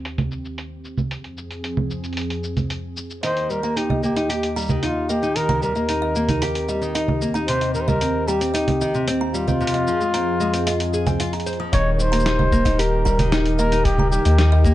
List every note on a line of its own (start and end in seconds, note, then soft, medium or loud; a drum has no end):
0.00 1.07 D#2 medium
0.00 1.07 D#3 medium
0.00 1.09 C4 medium
0.00 1.07 G4 medium
0.05 closed hi-hat medium
0.05 shaker soft
0.18 closed hi-hat soft
0.18 low conga medium
0.31 shaker medium
0.45 shaker soft
0.58 closed hi-hat soft
0.58 shaker soft
0.85 shaker medium
0.98 low conga medium
0.98 shaker soft
1.11 3.22 F2 medium
1.11 3.22 F3 medium
1.11 3.22 C4 medium
1.11 3.22 G#4 medium
1.11 closed hi-hat soft
1.11 shaker soft
1.24 closed hi-hat soft
1.38 shaker medium
1.51 closed hi-hat soft
1.51 shaker soft
1.64 closed hi-hat soft
1.64 shaker soft
1.77 low conga medium
1.91 shaker medium
2.04 closed hi-hat soft
2.04 shaker soft
2.13 closed hi-hat soft
2.17 closed hi-hat medium
2.17 shaker soft
2.21 closed hi-hat soft
2.30 closed hi-hat soft
2.43 shaker medium
2.57 closed hi-hat soft
2.57 low conga medium
2.57 shaker soft
2.70 closed hi-hat soft
2.70 shaker soft
2.97 shaker medium
3.10 shaker soft
3.23 9.57 D#2 medium
3.23 3.49 D#3 medium
3.23 9.57 D#3 medium
3.23 5.34 A#3 medium
3.23 9.57 G4 medium
3.23 3.52 C5 medium
3.23 3.36 D#5 medium
3.23 closed hi-hat medium
3.23 shaker soft
3.37 closed hi-hat soft
3.50 3.62 G3 medium
3.50 3.79 A#4 medium
3.50 shaker medium
3.63 3.75 A#3 medium
3.63 3.71 A#5 medium
3.63 shaker soft
3.76 4.02 D#4 medium
3.76 4.03 G4 medium
3.76 closed hi-hat soft
3.76 shaker soft
3.90 4.03 D#5 medium
3.90 low conga medium
4.03 4.15 A#3 medium
4.03 4.53 G4 medium
4.03 shaker medium
4.16 4.29 D#4 medium
4.16 4.29 D#5 medium
4.16 closed hi-hat soft
4.16 shaker soft
4.29 4.55 G4 medium
4.29 closed hi-hat medium
4.29 shaker soft
4.43 closed hi-hat soft
4.56 4.68 G3 medium
4.56 4.64 A#5 medium
4.56 shaker medium
4.59 shaker soft
4.61 shaker soft
4.63 shaker soft
4.65 shaker soft
4.67 low conga medium
4.67 shaker soft
4.69 4.82 D#3 medium
4.69 shaker soft
4.83 5.08 D#4 medium
4.83 5.11 F4 medium
4.83 4.96 D#5 medium
4.83 closed hi-hat soft
4.83 shaker soft
5.09 5.21 A#3 medium
5.09 5.38 G4 medium
5.09 5.22 D#5 medium
5.09 shaker medium
5.23 5.35 D#4 medium
5.23 shaker soft
5.36 5.61 D#3 medium
5.36 11.69 C4 medium
5.36 5.62 A#4 loud
5.36 closed hi-hat medium
5.36 shaker soft
5.49 5.57 A#5 medium
5.49 closed hi-hat soft
5.49 low conga medium
5.62 5.74 G3 medium
5.62 7.18 A#4 medium
5.62 shaker medium
5.75 5.88 A#3 medium
5.75 5.88 D#5 medium
5.75 shaker soft
5.89 6.14 D#4 medium
5.89 closed hi-hat medium
5.89 shaker soft
6.02 6.15 D#5 medium
6.15 6.28 A#3 medium
6.15 shaker medium
6.29 6.42 D#4 medium
6.29 closed hi-hat soft
6.29 low conga medium
6.29 shaker soft
6.42 6.67 G4 medium
6.42 6.50 A#5 medium
6.42 closed hi-hat medium
6.42 shaker soft
6.55 closed hi-hat soft
6.69 6.81 G3 medium
6.69 6.81 D#5 medium
6.69 shaker medium
6.82 6.94 D#3 medium
6.82 shaker soft
6.95 7.20 D#4 medium
6.95 7.08 D#5 medium
6.95 closed hi-hat medium
6.95 shaker soft
7.08 low conga medium
7.22 7.34 A#3 medium
7.22 shaker medium
7.34 7.47 D#4 medium
7.34 7.42 A#5 medium
7.34 shaker soft
7.48 7.73 C3 medium
7.48 7.73 C5 loud
7.48 closed hi-hat medium
7.48 shaker soft
7.61 7.74 D#5 medium
7.61 closed hi-hat soft
7.74 7.87 D#3 medium
7.74 7.83 A#4 medium
7.74 shaker medium
7.81 7.90 C5 medium
7.88 8.00 G3 medium
7.88 8.30 A#4 loud
7.88 8.01 D#5 medium
7.88 low conga medium
7.88 shaker soft
8.01 8.27 C4 medium
8.01 closed hi-hat medium
8.01 shaker soft
8.28 8.40 G3 medium
8.28 9.08 G4 medium
8.28 8.36 A#5 medium
8.28 shaker medium
8.41 8.54 C4 medium
8.41 closed hi-hat soft
8.41 shaker soft
8.54 8.80 D#4 medium
8.54 8.67 D#5 medium
8.54 closed hi-hat medium
8.54 shaker soft
8.68 closed hi-hat soft
8.68 low conga medium
8.81 8.93 D#3 medium
8.81 8.94 D#5 medium
8.81 shaker medium
8.94 9.06 C3 medium
8.94 shaker soft
9.08 9.33 C4 medium
9.08 closed hi-hat medium
9.08 shaker soft
9.21 9.29 A#5 medium
9.34 9.46 G3 medium
9.34 11.16 F4 loud
9.34 shaker medium
9.48 9.59 C4 medium
9.48 9.60 D#5 medium
9.48 low conga medium
9.48 shaker soft
9.61 11.71 F2 medium
9.61 9.86 C3 medium
9.61 11.71 F3 medium
9.61 11.71 G#4 medium
9.61 shaker soft
9.67 closed hi-hat medium
9.74 9.87 D#5 medium
9.74 closed hi-hat soft
9.87 9.99 F3 medium
9.87 shaker medium
10.01 10.12 G#3 medium
10.01 shaker soft
10.14 10.39 C4 medium
10.14 10.22 A#5 medium
10.14 closed hi-hat medium
10.14 shaker soft
10.40 10.52 G#3 medium
10.40 10.53 D#5 medium
10.40 shaker medium
10.53 10.66 C4 medium
10.53 closed hi-hat soft
10.53 shaker soft
10.67 10.79 F4 medium
10.67 10.79 D#5 medium
10.67 closed hi-hat medium
10.67 shaker soft
10.80 closed hi-hat soft
10.94 11.06 G#4 medium
10.94 shaker medium
11.06 11.19 C4 medium
11.06 11.19 G#5 medium
11.06 closed hi-hat soft
11.06 low conga medium
11.06 shaker soft
11.20 11.33 F4 medium
11.20 closed hi-hat medium
11.20 shaker soft
11.33 11.46 A#5 medium
11.33 closed hi-hat soft
11.40 closed hi-hat soft
11.46 11.58 C5 medium
11.46 closed hi-hat soft
11.46 shaker medium
11.53 closed hi-hat soft
11.60 11.72 F3 medium
11.60 11.67 D#6 medium
11.73 14.19 D#1 medium
11.73 11.98 D#3 medium
11.73 14.74 D#3 medium
11.73 14.74 D#4 medium
11.73 14.74 G4 medium
11.73 14.74 A#4 medium
11.73 11.93 C#5 loud
11.73 11.86 D#5 medium
11.73 kick loud
11.73 closed hi-hat medium
11.73 shaker soft
11.93 12.02 C#5 medium
11.99 12.11 G3 medium
11.99 12.82 C5 loud
11.99 shaker medium
12.12 12.25 A#3 medium
12.12 12.20 A#5 medium
12.12 closed hi-hat soft
12.19 shaker soft
12.26 12.51 D#4 medium
12.26 snare medium
12.26 closed hi-hat medium
12.39 12.52 D#5 medium
12.39 low conga medium
12.52 12.65 A#3 medium
12.52 kick medium
12.52 shaker medium
12.65 12.78 D#4 medium
12.65 12.78 D#5 medium
12.65 kick loud
12.65 closed hi-hat soft
12.65 shaker soft
12.79 13.04 G4 medium
12.79 13.33 A#4 medium
12.79 closed hi-hat medium
12.79 shaker soft
13.05 13.18 G3 medium
13.05 13.13 A#5 loud
13.05 kick medium
13.05 shaker medium
13.19 13.31 D#3 medium
13.19 closed hi-hat soft
13.19 low conga medium
13.19 shaker soft
13.32 13.57 D#4 loud
13.32 13.45 D#5 medium
13.32 snare medium
13.32 closed hi-hat medium
13.32 shaker soft
13.46 closed hi-hat soft
13.58 13.71 A#3 medium
13.58 13.86 A#4 loud
13.58 13.72 D#5 loud
13.58 shaker medium
13.72 13.84 D#4 loud
13.72 closed hi-hat soft
13.72 shaker soft
13.85 14.11 D#3 medium
13.85 14.10 G4 loud
13.85 kick loud
13.85 closed hi-hat medium
13.85 shaker soft
13.98 14.07 A#5 medium
13.98 low conga medium
14.11 14.24 G3 medium
14.11 14.74 G4 medium
14.11 shaker medium
14.25 14.74 D#2 medium
14.25 14.37 A#3 medium
14.25 14.38 D#5 medium
14.25 closed hi-hat soft
14.25 shaker soft
14.38 14.64 D#4 medium
14.38 snare loud
14.38 closed hi-hat soft
14.38 shaker soft
14.52 14.65 D#5 loud
14.64 14.74 A#3 medium
14.64 kick loud
14.64 shaker medium